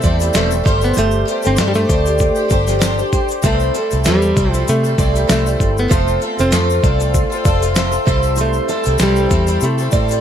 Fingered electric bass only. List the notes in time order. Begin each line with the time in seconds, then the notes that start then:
0.04 E2
0.35 E1
0.66 G1
0.97 G1
1.46 G1
1.59 G2
1.90 D2
2.51 G1
3.44 C2
3.93 C2
4.07 E2
4.37 C2
4.69 C3
4.99 C2
5.30 C2
5.61 G1
5.91 F1
6.40 F1
6.53 F2
6.84 C2
7.46 F1
8.08 C2
8.87 C2
9.00 C2
9.31 E2
9.62 C3
9.94 A2